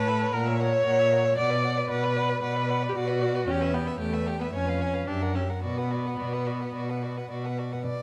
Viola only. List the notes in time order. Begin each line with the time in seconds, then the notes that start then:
Already playing: B4
0.33 A#4
0.59 C#5
1.38 D5
1.90 B4
2.42 B4
2.89 G4
2.95 F#4
3.47 C#4
3.74 B3
4.00 A3
4.41 B3
4.54 C#4
5.07 D4
5.35 C#4
5.62 B3